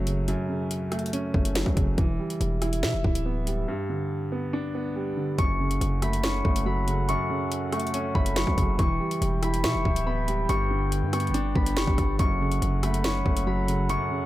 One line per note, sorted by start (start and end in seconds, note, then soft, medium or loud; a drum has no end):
0.00 0.36 F#1 loud
0.00 0.28 F#2 medium
0.00 0.07 C#3 medium
0.00 0.92 F#3 medium
0.00 0.92 A3 medium
0.00 0.49 C#4 loud
0.07 0.48 C#3 medium
0.07 closed hi-hat medium
0.28 1.34 F#2 loud
0.28 closed hi-hat medium
0.49 1.55 C#3 medium
0.71 closed hi-hat medium
0.92 1.33 A3 medium
0.92 cross-stick medium
0.92 closed hi-hat medium
0.99 closed hi-hat medium
1.06 closed hi-hat medium
1.13 1.98 C#4 medium
1.13 closed hi-hat medium
1.34 1.65 F#1 loud
1.34 1.98 A3 medium
1.34 kick medium
1.45 closed hi-hat medium
1.55 1.98 F#3 medium
1.55 snare loud
1.55 closed hi-hat medium
1.66 1.76 C#2 loud
1.66 kick loud
1.77 1.97 F#1 loud
1.77 1.98 C#3 medium
1.77 kick medium
1.77 closed hi-hat medium
1.98 2.18 E1 loud
1.98 3.04 E3 loud
1.98 kick loud
1.98 closed hi-hat medium
2.19 3.26 G3 medium
2.30 closed hi-hat medium
2.41 2.85 E1 loud
2.41 closed hi-hat medium
2.62 3.03 E4 medium
2.62 cross-stick medium
2.62 closed hi-hat medium
2.73 closed hi-hat medium
2.83 2.95 B2 loud
2.83 3.68 E5 loud
2.83 snare loud
2.94 3.04 E1 loud
3.04 3.66 D1 loud
3.04 3.68 E4 medium
3.04 kick medium
3.15 closed hi-hat medium
3.26 3.68 B3 medium
3.47 3.68 G3 medium
3.47 closed hi-hat medium
3.68 4.75 G2 loud
3.90 4.96 D3 medium
4.32 4.73 B3 medium
4.53 5.38 D4 loud
4.75 5.38 B3 medium
4.96 5.38 G3 medium
5.17 5.38 D3 medium
5.38 5.79 F#1 loud
5.38 6.45 F#2 medium
5.38 8.76 F#3 medium
5.38 8.76 C#4 medium
5.38 8.75 A4 medium
5.38 8.76 F#5 medium
5.38 6.23 C#6 loud
5.38 kick loud
5.38 closed hi-hat medium
5.60 6.66 C#3 medium
5.71 closed hi-hat medium
5.81 6.42 F#1 loud
5.81 closed hi-hat medium
6.02 6.44 A3 medium
6.02 6.66 B5 medium
6.02 cross-stick medium
6.02 closed hi-hat medium
6.13 closed hi-hat medium
6.23 7.30 C#4 loud
6.23 7.08 C#6 medium
6.23 snare loud
6.45 7.16 F#1 loud
6.45 7.51 A3 medium
6.45 kick medium
6.56 closed hi-hat medium
6.66 7.72 F#3 medium
6.66 8.01 B5 medium
6.88 7.29 C#3 medium
6.88 closed hi-hat medium
7.09 8.15 F#2 loud
7.09 7.72 C#6 loud
7.09 closed hi-hat medium
7.30 8.36 C#3 medium
7.52 closed hi-hat medium
7.72 8.14 A3 medium
7.72 8.36 C#6 medium
7.72 cross-stick medium
7.72 closed hi-hat medium
7.80 closed hi-hat medium
7.87 closed hi-hat medium
7.94 8.79 C#4 loud
7.94 closed hi-hat medium
8.15 8.46 F#1 loud
8.15 8.79 A3 medium
8.15 9.42 B5 medium
8.15 kick medium
8.26 closed hi-hat medium
8.36 8.79 F#3 medium
8.36 8.79 C#6 medium
8.36 snare loud
8.36 closed hi-hat medium
8.47 8.57 C#2 loud
8.47 kick loud
8.58 8.78 F#1 loud
8.58 8.79 C#3 medium
8.58 kick medium
8.58 closed hi-hat medium
8.79 8.99 E1 loud
8.79 10.47 E3 medium
8.79 9.85 E3 loud
8.79 10.47 E4 medium
8.79 12.16 B4 medium
8.79 12.16 G5 medium
8.79 9.63 C#6 loud
8.79 kick loud
8.79 closed hi-hat medium
9.00 10.07 G3 medium
9.11 closed hi-hat medium
9.22 9.66 E1 loud
9.22 closed hi-hat medium
9.43 9.84 E4 medium
9.43 10.06 B5 medium
9.43 cross-stick medium
9.43 closed hi-hat medium
9.54 closed hi-hat medium
9.64 9.76 B2 loud
9.64 10.49 E5 loud
9.64 10.49 C#6 loud
9.64 snare loud
9.75 9.85 E1 loud
9.85 10.47 D1 loud
9.85 10.49 E4 medium
9.85 kick medium
9.96 closed hi-hat medium
10.06 10.49 B3 medium
10.06 11.42 B5 medium
10.28 10.49 G3 medium
10.28 closed hi-hat medium
10.49 11.04 G1 loud
10.49 11.55 G2 loud
10.49 12.18 G3 medium
10.49 12.18 D4 medium
10.49 11.12 C#6 loud
10.49 closed hi-hat medium
10.71 11.77 D3 medium
10.92 closed hi-hat medium
11.02 11.30 G2 loud
11.13 11.54 B3 medium
11.13 11.77 C#6 medium
11.13 cross-stick medium
11.13 closed hi-hat medium
11.20 closed hi-hat medium
11.27 11.54 G1 loud
11.27 closed hi-hat soft
11.34 12.19 D4 loud
11.34 closed hi-hat medium
11.55 11.78 G1 loud
11.55 12.19 B3 medium
11.55 12.83 B5 medium
11.55 kick medium
11.66 closed hi-hat medium
11.77 11.87 F#1 loud
11.77 12.19 G3 medium
11.77 12.19 C#6 medium
11.77 snare loud
11.77 closed hi-hat medium
11.87 11.98 G1 loud
11.87 kick loud
11.98 12.18 G1 loud
11.98 12.19 D3 medium
11.98 kick medium
11.98 cross-stick medium
11.98 closed hi-hat medium
12.19 12.60 F#1 loud
12.19 13.26 F#2 loud
12.19 14.26 F#3 medium
12.19 14.26 C#4 medium
12.19 14.26 A4 medium
12.19 14.26 F#5 medium
12.19 13.04 C#6 loud
12.19 kick loud
12.19 closed hi-hat medium
12.41 13.47 C#3 medium
12.52 closed hi-hat medium
12.62 13.23 F#1 loud
12.62 closed hi-hat medium
12.83 13.24 A3 medium
12.83 13.46 B5 medium
12.83 cross-stick medium
12.83 closed hi-hat medium
12.94 closed hi-hat medium
13.04 14.11 C#4 loud
13.04 13.89 C#6 medium
13.04 snare loud
13.26 13.97 F#1 loud
13.26 14.26 A3 medium
13.26 kick medium
13.37 closed hi-hat medium
13.47 14.26 F#3 loud
13.47 14.26 B5 medium
13.68 14.09 C#3 medium
13.68 closed hi-hat medium
13.89 14.26 F#2 loud
13.89 14.26 C#6 loud
13.89 closed hi-hat medium
14.11 14.26 C#3 medium